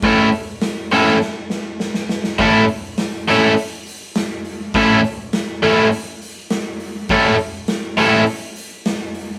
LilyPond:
<<
  \new Staff \with { instrumentName = "Overdriven electric guitar" } { \time 4/4 \key a \major \tempo 4 = 102 <a, a cis' e' a'>8 r4 <a, a cis' e' a'>8 r2 | <a, a cis' e' a'>8 r4 <a, a cis' e' a'>8 r2 | <a, a cis' e' a'>8 r4 <a, a cis' e' a'>8 r2 | <a, a cis' e' a'>8 r4 <a, a cis' e' a'>8 r2 | }
  \new DrumStaff \with { instrumentName = "Drums" } \drummode { \time 4/4 <hho bd>8 hho8 <hho sn>8 hho8 sn8 sn8 sn16 sn16 sn16 sn16 | <hho bd>8 hho8 <hho sn>8 hho8 hho8 hho8 <hho sn>8 hho8 | <hho bd>8 hho8 <hho sn>8 hho8 hho8 hho8 <hho sn>8 hho8 | <hho bd>8 hho8 <hho sn>8 hho8 hho8 hho8 <hho sn>8 hho8 | }
>>